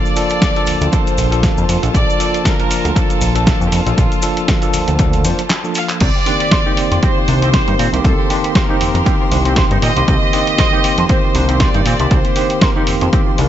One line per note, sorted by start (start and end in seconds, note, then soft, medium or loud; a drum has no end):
0.00 0.14 F3 medium
0.00 0.14 A#3 medium
0.00 0.14 D4 medium
0.00 6.02 F4 medium
0.00 0.14 A4 loud
0.00 0.92 D5 loud
0.00 6.02 A5 medium
0.06 maracas soft
0.16 0.52 F3 medium
0.16 0.52 A#3 medium
0.16 0.53 D4 medium
0.16 0.53 A4 loud
0.16 open hi-hat loud
0.16 maracas medium
0.29 closed hi-hat soft
0.29 maracas soft
0.42 kick loud
0.42 snare loud
0.42 closed hi-hat medium
0.42 maracas medium
0.56 0.90 F3 loud
0.56 0.90 A#3 medium
0.56 0.90 D4 medium
0.56 0.90 A4 loud
0.56 closed hi-hat soft
0.67 0.79 D2 soft
0.67 open hi-hat loud
0.67 maracas medium
0.81 0.88 D2 medium
0.81 closed hi-hat soft
0.81 maracas soft
0.92 1.28 F3 medium
0.92 1.28 A#3 medium
0.92 1.29 D4 medium
0.92 1.29 A4 loud
0.92 1.69 C5 medium
0.92 kick loud
0.92 closed hi-hat medium
0.92 maracas medium
1.07 closed hi-hat soft
1.07 maracas soft
1.18 1.49 A#1 loud
1.18 open hi-hat loud
1.18 maracas medium
1.31 1.79 F3 medium
1.31 1.79 A#3 medium
1.31 1.79 D4 medium
1.31 1.80 A4 loud
1.31 closed hi-hat medium
1.31 maracas soft
1.43 kick loud
1.43 snare loud
1.43 closed hi-hat medium
1.43 maracas medium
1.58 1.65 F2 medium
1.58 maracas soft
1.69 1.78 F2 medium
1.69 open hi-hat loud
1.69 maracas medium
1.82 1.90 A#1 medium
1.82 2.16 F3 medium
1.82 2.17 A#3 medium
1.82 2.17 D4 medium
1.82 2.17 A4 loud
1.82 closed hi-hat medium
1.82 maracas soft
1.94 2.03 A#1 loud
1.94 2.42 D5 loud
1.94 kick loud
1.94 closed hi-hat medium
1.94 maracas soft
2.10 maracas soft
2.19 2.55 F3 medium
2.19 2.56 A#3 medium
2.19 2.56 D4 medium
2.19 2.56 A4 loud
2.19 open hi-hat loud
2.19 maracas medium
2.34 closed hi-hat medium
2.34 maracas soft
2.45 2.96 A#4 loud
2.45 kick loud
2.45 snare loud
2.45 closed hi-hat medium
2.45 maracas soft
2.59 2.93 F3 loud
2.59 2.93 A#3 medium
2.59 2.94 D4 medium
2.59 2.94 A#4 loud
2.59 closed hi-hat soft
2.71 open hi-hat loud
2.71 maracas medium
2.84 2.92 D2 medium
2.84 closed hi-hat medium
2.84 maracas soft
2.95 3.32 F3 medium
2.95 3.32 A#3 medium
2.95 3.32 D4 medium
2.95 3.32 A4 loud
2.95 3.46 A4 loud
2.95 kick loud
2.95 closed hi-hat medium
2.95 maracas soft
3.10 closed hi-hat soft
3.10 maracas soft
3.21 3.52 A#1 loud
3.21 open hi-hat loud
3.21 maracas medium
3.35 3.83 F3 loud
3.35 3.83 A#3 medium
3.35 3.83 D4 medium
3.35 3.83 A4 loud
3.35 closed hi-hat medium
3.35 maracas soft
3.46 3.65 A4 medium
3.46 kick loud
3.46 snare loud
3.46 closed hi-hat medium
3.46 maracas soft
3.61 3.68 F2 medium
3.61 maracas soft
3.66 3.72 G4 medium
3.72 3.81 F2 loud
3.72 4.75 F4 medium
3.72 open hi-hat loud
3.72 maracas medium
3.86 3.93 A#1 medium
3.86 4.20 F3 medium
3.86 4.20 A#3 medium
3.86 4.20 D4 medium
3.86 4.21 A4 loud
3.86 closed hi-hat medium
3.86 maracas soft
3.98 4.06 A#1 loud
3.98 kick loud
3.98 closed hi-hat medium
3.98 maracas soft
4.12 closed hi-hat soft
4.12 maracas soft
4.22 4.59 F3 medium
4.22 4.59 A#3 medium
4.22 4.59 D4 medium
4.22 4.59 A4 loud
4.22 open hi-hat loud
4.22 maracas medium
4.37 closed hi-hat medium
4.37 maracas soft
4.48 kick loud
4.48 snare loud
4.48 closed hi-hat medium
4.48 maracas medium
4.62 4.96 F3 medium
4.62 4.96 A#3 medium
4.62 4.97 D4 medium
4.62 4.97 A4 loud
4.62 closed hi-hat soft
4.62 maracas soft
4.73 4.85 D2 soft
4.73 open hi-hat loud
4.73 maracas medium
4.88 5.26 D2 medium
4.88 closed hi-hat medium
4.88 maracas soft
4.99 5.22 F3 medium
4.99 5.22 A#3 medium
4.99 5.22 D4 medium
4.99 5.23 A4 loud
4.99 kick loud
4.99 closed hi-hat medium
4.99 maracas medium
5.13 closed hi-hat soft
5.13 maracas soft
5.24 5.33 F2 loud
5.24 5.40 F3 medium
5.24 5.40 A#3 medium
5.24 5.40 D4 medium
5.24 5.41 C5 medium
5.24 open hi-hat loud
5.24 maracas medium
5.39 closed hi-hat medium
5.39 maracas soft
5.50 snare loud
5.50 clap loud
5.50 closed hi-hat medium
5.50 maracas soft
5.64 6.00 F3 medium
5.64 6.00 A#3 medium
5.64 6.00 D4 medium
5.64 6.00 A4 medium
5.64 maracas soft
5.75 5.88 F5 loud
5.75 open hi-hat loud
5.75 maracas medium
5.89 clap medium
5.89 closed hi-hat medium
5.89 maracas soft
6.00 6.10 C2 loud
6.00 6.08 C4 medium
6.00 13.49 C5 medium
6.00 6.99 D5 loud
6.00 13.49 C6 medium
6.00 kick loud
6.00 closed hi-hat medium
6.00 crash loud
6.16 6.24 G4 medium
6.26 6.62 D#3 medium
6.26 6.63 A#3 medium
6.26 6.63 C4 medium
6.26 6.34 D4 medium
6.26 6.63 G4 loud
6.26 open hi-hat loud
6.40 6.47 G4 medium
6.40 closed hi-hat medium
6.51 6.59 C5 loud
6.51 kick loud
6.51 snare loud
6.51 closed hi-hat medium
6.66 7.00 D#3 loud
6.66 7.00 A#3 medium
6.66 7.00 C4 medium
6.66 6.72 D#4 loud
6.66 7.00 G4 loud
6.77 6.85 C4 medium
6.77 open hi-hat loud
6.92 6.98 F2 medium
6.92 6.97 C5 medium
6.92 closed hi-hat medium
7.03 7.39 D#3 medium
7.03 7.39 A#3 medium
7.03 7.39 C4 medium
7.03 7.10 C4 medium
7.03 7.39 G4 loud
7.03 8.05 C5 loud
7.03 kick loud
7.03 closed hi-hat medium
7.18 7.21 F4 medium
7.28 7.59 C2 loud
7.28 7.35 D4 medium
7.28 open hi-hat loud
7.42 7.90 D#3 medium
7.42 7.90 A#3 medium
7.42 7.90 C4 medium
7.42 7.48 C4 loud
7.42 7.90 G4 loud
7.42 closed hi-hat medium
7.54 7.61 C5 loud
7.54 kick loud
7.54 snare loud
7.54 closed hi-hat medium
7.68 7.75 G2 medium
7.68 7.74 D#4 loud
7.68 closed hi-hat soft
7.79 7.88 A#2 loud
7.79 7.90 C4 loud
7.79 open hi-hat loud
7.93 8.00 C2 medium
7.93 8.27 D#3 medium
7.93 8.27 A#3 medium
7.93 8.27 C4 medium
7.93 8.28 G4 loud
7.93 7.99 C5 medium
7.93 closed hi-hat medium
8.04 8.13 C2 loud
8.04 8.12 C4 medium
8.04 8.52 A4 loud
8.04 kick loud
8.04 closed hi-hat medium
8.19 8.28 G4 medium
8.29 8.66 D#3 medium
8.29 8.66 A#3 medium
8.29 8.66 C4 medium
8.29 8.37 D4 medium
8.29 8.66 G4 loud
8.29 open hi-hat loud
8.44 8.50 G4 medium
8.44 closed hi-hat medium
8.55 9.57 A#4 medium
8.55 8.63 C5 loud
8.55 kick loud
8.55 snare loud
8.55 closed hi-hat medium
8.69 9.03 D#3 loud
8.69 9.03 A#3 medium
8.69 9.03 C4 medium
8.69 8.75 D#4 loud
8.69 9.04 G4 loud
8.81 8.92 F2 soft
8.81 8.88 C4 medium
8.81 open hi-hat loud
8.94 9.02 F2 medium
8.94 9.01 C5 medium
8.94 closed hi-hat medium
9.05 9.42 D#3 medium
9.05 9.42 A#3 medium
9.05 9.42 C4 medium
9.05 9.14 C4 medium
9.05 9.42 G4 loud
9.05 kick loud
9.05 closed hi-hat medium
9.21 9.24 F4 medium
9.32 9.62 C2 loud
9.32 9.39 D4 medium
9.32 open hi-hat loud
9.45 9.93 D#3 loud
9.45 9.93 A#3 medium
9.45 9.93 C4 medium
9.45 9.52 C4 loud
9.45 9.93 G4 loud
9.45 closed hi-hat medium
9.56 9.64 C5 loud
9.56 kick loud
9.56 snare loud
9.56 closed hi-hat medium
9.71 9.78 G2 loud
9.71 9.77 D#4 loud
9.71 closed hi-hat soft
9.82 9.91 A#2 loud
9.82 9.93 C4 loud
9.82 10.06 D#5 loud
9.82 open hi-hat loud
9.96 10.03 C2 loud
9.96 10.30 D#3 medium
9.96 10.30 A#3 medium
9.96 10.31 C4 medium
9.96 10.31 G4 loud
9.96 10.03 C5 medium
9.96 closed hi-hat medium
10.08 10.17 C2 loud
10.08 10.15 C4 medium
10.08 11.06 D#5 loud
10.08 kick loud
10.08 closed hi-hat medium
10.23 10.31 G4 medium
10.33 10.69 D#3 medium
10.33 10.69 A#3 medium
10.33 10.69 C4 medium
10.33 10.41 D4 medium
10.33 10.69 G4 loud
10.33 open hi-hat loud
10.47 10.54 G4 medium
10.47 closed hi-hat medium
10.58 10.66 C5 loud
10.58 kick loud
10.58 snare loud
10.58 closed hi-hat medium
10.72 11.06 D#3 loud
10.72 11.06 A#3 medium
10.72 11.07 C4 medium
10.72 10.79 D#4 loud
10.72 11.07 G4 loud
10.84 10.92 C4 medium
10.84 open hi-hat loud
10.98 11.05 F2 medium
10.98 11.04 C5 medium
10.98 closed hi-hat medium
11.09 11.45 D#3 medium
11.09 11.45 A#3 medium
11.09 11.46 C4 medium
11.09 11.17 C4 medium
11.09 11.46 G4 loud
11.09 11.61 C5 loud
11.09 kick loud
11.09 closed hi-hat medium
11.25 11.28 F4 medium
11.35 11.66 C2 loud
11.35 11.43 D4 medium
11.35 open hi-hat loud
11.48 11.96 D#3 medium
11.48 11.96 A#3 medium
11.48 11.96 C4 medium
11.48 11.55 C4 loud
11.48 11.97 G4 loud
11.48 closed hi-hat medium
11.60 11.68 C5 loud
11.60 12.12 D5 loud
11.60 kick loud
11.60 snare loud
11.60 closed hi-hat medium
11.74 11.81 G2 loud
11.74 11.80 D#4 loud
11.74 closed hi-hat soft
11.86 11.94 A#2 loud
11.86 11.97 C4 loud
11.86 open hi-hat loud
11.99 12.07 C2 loud
11.99 12.34 D#3 medium
11.99 12.34 A#3 medium
11.99 12.34 C4 medium
11.99 12.34 G4 loud
11.99 12.06 C5 medium
11.99 closed hi-hat medium
12.11 12.20 C2 loud
12.11 12.18 C4 medium
12.11 12.62 C5 loud
12.11 kick loud
12.11 closed hi-hat medium
12.25 12.34 G4 medium
12.25 closed hi-hat soft
12.36 12.72 D#3 medium
12.36 12.72 A#3 medium
12.36 12.73 C4 medium
12.36 12.44 D4 medium
12.36 12.73 G4 loud
12.36 open hi-hat loud
12.50 12.57 G4 medium
12.50 closed hi-hat medium
12.61 13.13 A#4 medium
12.61 12.69 C5 loud
12.61 kick loud
12.61 snare loud
12.61 closed hi-hat medium
12.75 13.10 D#3 loud
12.75 13.10 A#3 medium
12.75 13.10 C4 medium
12.75 12.82 D#4 loud
12.75 13.10 G4 loud
12.87 12.99 F2 soft
12.87 12.95 C4 medium
12.87 open hi-hat loud
13.01 13.09 F2 medium
13.01 13.07 C5 medium
13.01 closed hi-hat soft
13.12 13.36 D#3 medium
13.12 13.36 A#3 medium
13.12 13.20 C4 medium
13.12 13.36 C4 medium
13.12 13.36 G4 loud
13.12 kick loud
13.12 closed hi-hat medium
13.27 13.30 F4 medium
13.38 13.49 C2 loud
13.38 13.49 D#3 medium
13.38 13.49 A#3 medium
13.38 13.49 C4 medium
13.38 13.45 D4 medium
13.38 13.49 A#4 medium
13.38 open hi-hat loud